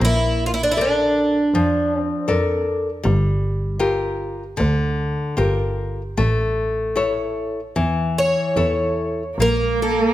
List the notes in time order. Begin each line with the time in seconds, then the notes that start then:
0.01 A#1 A#3 E4
0.46 F4
0.54 E4
0.63 D4
0.72 E4
0.77 A4 A#4 D5
0.81 D4
1.54 F2 F3
2.00 C4
2.28 F2 A4 A#4 D5
3.03 G1 G3
3.79 F4 G4 A#4
4.57 D2 D3
5.37 G1 F4 G4 A#4
6.17 A1 A3
6.96 E4 A4 C#5
7.76 E2 E3
8.18 C#5
8.56 E2 E4 A4 C#5
9.38 A#1 A#3 A#4
9.82 A4